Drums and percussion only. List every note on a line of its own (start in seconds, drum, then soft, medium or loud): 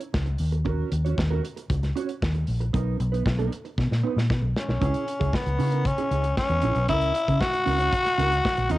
0.01 closed hi-hat soft
0.14 kick loud
0.14 snare loud
0.26 closed hi-hat soft
0.38 open hi-hat medium
0.52 closed hi-hat soft
0.65 kick loud
0.65 closed hi-hat medium
0.92 closed hi-hat medium
1.06 closed hi-hat soft
1.18 kick loud
1.18 snare loud
1.45 closed hi-hat medium
1.57 closed hi-hat medium
1.70 kick loud
1.70 closed hi-hat medium
1.83 snare soft
1.83 closed hi-hat soft
1.97 closed hi-hat medium
2.09 closed hi-hat soft
2.23 kick loud
2.23 snare loud
2.35 closed hi-hat soft
2.47 open hi-hat medium
2.61 closed hi-hat soft
2.74 kick medium
2.74 closed hi-hat medium
3.00 closed hi-hat medium
3.14 closed hi-hat soft
3.26 kick medium
3.26 snare loud
3.39 closed hi-hat soft
3.53 closed hi-hat medium
3.65 closed hi-hat medium
3.78 kick loud
3.78 snare medium
3.92 snare medium
4.18 snare medium
4.30 kick loud
4.30 snare medium
4.57 snare loud
4.69 snare medium
4.81 kick loud
4.81 closed hi-hat medium
4.94 closed hi-hat soft
5.08 closed hi-hat medium
5.21 kick medium
5.21 closed hi-hat soft
5.33 kick loud
5.33 snare loud
5.46 closed hi-hat soft
5.60 open hi-hat medium
5.72 closed hi-hat medium
5.85 kick loud
5.85 closed hi-hat medium
5.98 closed hi-hat soft
6.11 closed hi-hat medium
6.24 closed hi-hat medium
6.37 kick loud
6.37 snare loud
6.49 closed hi-hat soft
6.61 closed hi-hat medium
6.75 closed hi-hat soft
6.88 kick medium
6.88 closed hi-hat medium
7.01 closed hi-hat soft
7.15 closed hi-hat medium
7.28 kick medium
7.28 closed hi-hat soft
7.40 kick loud
7.40 snare loud
7.53 closed hi-hat soft
7.67 open hi-hat medium
7.79 closed hi-hat medium
7.92 kick loud
7.92 closed hi-hat medium
8.05 snare soft
8.05 closed hi-hat soft
8.19 closed hi-hat medium
8.32 closed hi-hat soft
8.45 kick loud
8.45 snare loud
8.57 closed hi-hat soft
8.69 closed hi-hat medium